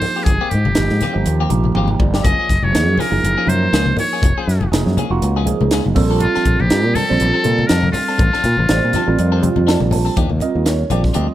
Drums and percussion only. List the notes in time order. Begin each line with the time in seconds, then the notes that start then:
0.02 open hi-hat, low conga
0.26 kick, closed hi-hat, low conga
0.51 closed hi-hat, low conga
0.65 high conga
0.75 snare, closed hi-hat
0.89 snare
1.00 snare, closed hi-hat, high conga, low conga
1.26 closed hi-hat
1.50 closed hi-hat, high conga
1.64 high conga
1.75 high tom
1.88 high conga
2.00 kick, low conga
2.14 snare
2.24 kick, closed hi-hat, low conga
2.49 kick, snare, closed hi-hat
2.63 high conga
2.75 snare, closed hi-hat
2.98 snare, open hi-hat, high conga, low conga
3.25 closed hi-hat
3.47 closed hi-hat, high conga
3.73 snare, closed hi-hat
3.86 high conga
3.97 open hi-hat, low conga
4.22 kick, closed hi-hat, low conga
4.49 snare, closed hi-hat
4.61 high conga
4.73 snare, closed hi-hat
4.87 snare
4.97 closed hi-hat, high conga, low conga
5.22 closed hi-hat
5.47 closed hi-hat, high conga
5.61 high conga
5.71 snare, closed hi-hat
5.86 high conga
5.96 kick, open hi-hat, low conga
6.20 closed hi-hat, low conga
6.35 snare
6.45 kick, closed hi-hat
6.60 high conga
6.70 snare, closed hi-hat
6.95 open hi-hat, high conga, low conga
7.20 closed hi-hat
7.44 closed hi-hat, high conga
7.58 high conga
7.69 snare, closed hi-hat
7.83 high conga
7.93 open hi-hat, low conga
8.18 kick, closed hi-hat, low conga
8.33 snare
8.44 snare, closed hi-hat, low conga
8.57 high conga
8.69 snare, closed hi-hat
8.93 snare, closed hi-hat, high conga, low conga
9.19 closed hi-hat
9.43 closed hi-hat, high conga
9.56 high conga
9.68 snare, closed hi-hat
9.80 high conga
9.91 open hi-hat, low conga
10.16 kick, closed hi-hat, low conga
10.29 high conga
10.40 closed hi-hat, low conga
10.66 snare, closed hi-hat
10.90 closed hi-hat, high conga, low conga
11.04 kick, snare
11.14 closed hi-hat